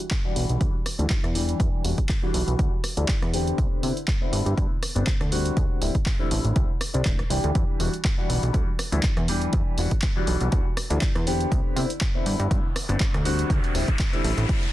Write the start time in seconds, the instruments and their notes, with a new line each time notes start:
0.11 kick, clap, closed hi-hat
0.24 grand piano E3 G3 D4 F#4
0.36 analog synth bass B1, open hi-hat
0.49 analog synth bass B1, closed hi-hat
0.61 analog synth bass D2, grand piano E3 G3, kick, closed hi-hat
0.86 cross-stick, open hi-hat
0.99 analog synth bass D2, grand piano E3 G3 D4 E4, closed hi-hat
1.10 kick, clap, closed hi-hat
1.24 analog synth bass E2, cross-stick, closed hi-hat
1.35 grand piano E3 G3 D4 G4, open hi-hat
1.49 closed hi-hat
1.60 analog synth bass E2, kick, closed hi-hat
1.84 analog synth bass E1, grand piano E3 G3 D4 F#4, open hi-hat
1.98 kick, closed hi-hat
2.09 kick, clap, closed hi-hat
2.22 grand piano E3 G3 D4 F#4
2.34 analog synth bass B1, open hi-hat
2.47 analog synth bass B1, closed hi-hat
2.59 analog synth bass D2, grand piano E3 G3 D4, kick, closed hi-hat
2.84 cross-stick, open hi-hat
2.97 analog synth bass D2, grand piano E3 G3 D4 E4, closed hi-hat
3.08 kick, clap, closed hi-hat
3.22 analog synth bass E2, cross-stick, closed hi-hat
3.33 grand piano D3 B3 C4 G4, open hi-hat
3.47 closed hi-hat
3.58 analog synth bass C2, kick, closed hi-hat
3.82 analog synth bass C3, grand piano D3 B3 C4 E4, open hi-hat
3.97 closed hi-hat
4.08 kick, clap, closed hi-hat
4.21 grand piano D3 B3 C4 E4
4.32 analog synth bass G2, open hi-hat
4.46 analog synth bass G2, closed hi-hat
4.57 analog synth bass G2, grand piano B3 C4, kick, closed hi-hat
4.83 cross-stick, open hi-hat
4.95 analog synth bass G1, grand piano D3 B3 C4 D4, closed hi-hat
5.07 kick, clap, closed hi-hat
5.20 analog synth bass D2, cross-stick, closed hi-hat
5.31 grand piano D3 G3 C4 F#4, open hi-hat
5.46 closed hi-hat
5.57 analog synth bass D2, kick, closed hi-hat
5.81 analog synth bass D1, grand piano D3 G3 C4 E4, open hi-hat
5.95 kick, closed hi-hat
6.06 kick, clap, closed hi-hat
6.19 grand piano D3 G3 C4 E4
6.31 analog synth bass A1, open hi-hat
6.44 analog synth bass A1, closed hi-hat
6.55 analog synth bass C2, grand piano D3 G3 C4 E4, kick, closed hi-hat
6.81 cross-stick, open hi-hat
6.94 analog synth bass C2, grand piano D3 G3 C4 D4, closed hi-hat
7.05 analog synth bass D1, kick, clap, closed hi-hat
7.19 cross-stick, closed hi-hat
7.30 analog synth bass C2, grand piano E3 G3 D4 G4, open hi-hat
7.44 analog synth bass D2, closed hi-hat
7.55 analog synth bass E2, kick, closed hi-hat
7.79 analog synth bass E1, grand piano E3 G3 D4 F#4, open hi-hat
7.93 closed hi-hat
8.05 kick, clap, closed hi-hat
8.18 grand piano E3 G3 D4 F#4
8.29 analog synth bass B1, open hi-hat
8.43 analog synth bass B1, closed hi-hat
8.53 analog synth bass D2, grand piano E3 G3 D4 F#4, kick, closed hi-hat
8.79 cross-stick, open hi-hat
8.92 analog synth bass D2, grand piano E3 G3 D4 E4, closed hi-hat
9.03 kick, clap, closed hi-hat
9.17 analog synth bass E2, cross-stick, closed hi-hat
9.28 grand piano E3 G3 D4 G4, open hi-hat
9.41 closed hi-hat
9.53 analog synth bass E2, kick, closed hi-hat
9.78 analog synth bass E1, grand piano E3 G3 D4 F#4, open hi-hat
9.91 kick, closed hi-hat
10.02 kick, clap, closed hi-hat
10.16 grand piano E3 G3 D4 F#4
10.27 analog synth bass B1, open hi-hat
10.41 analog synth bass B1, closed hi-hat
10.52 analog synth bass D2, grand piano E3 G3 D4 F#4, kick, closed hi-hat
10.77 cross-stick, open hi-hat
10.90 analog synth bass D2, grand piano E3 G3 D4 E4, closed hi-hat
11.01 kick, clap, closed hi-hat
11.15 analog synth bass E2, cross-stick, closed hi-hat
11.26 grand piano D3 B3 C4 G4, open hi-hat
11.40 closed hi-hat
11.51 analog synth bass C2, kick, closed hi-hat, riser
11.76 analog synth bass C3, grand piano D3 B3 C4 E4, open hi-hat
11.90 closed hi-hat
12.01 kick, clap, closed hi-hat
12.14 grand piano D3 B3 C4 E4
12.26 analog synth bass G2, open hi-hat
12.40 analog synth bass G2, closed hi-hat
12.51 analog synth bass G2, grand piano B3 C4 E4, kick, closed hi-hat
12.76 cross-stick, open hi-hat
12.89 analog synth bass G1, grand piano D3 B3 C4 D4, closed hi-hat
13.00 kick, clap, closed hi-hat
13.14 analog synth bass D2, cross-stick, closed hi-hat
13.25 grand piano D3 G3 C4 F#4, open hi-hat
13.39 closed hi-hat
13.50 analog synth bass D2, kick, closed hi-hat
13.64 closed hi-hat
13.75 analog synth bass D1, grand piano D3 G3 C4 E4, open hi-hat
13.88 kick, closed hi-hat
13.99 kick, clap, closed hi-hat
14.13 grand piano D3 G3 C4 E4, closed hi-hat
14.24 analog synth bass A1, open hi-hat
14.37 analog synth bass A1, closed hi-hat
14.49 grand piano D3 E4, kick, closed hi-hat
14.63 closed hi-hat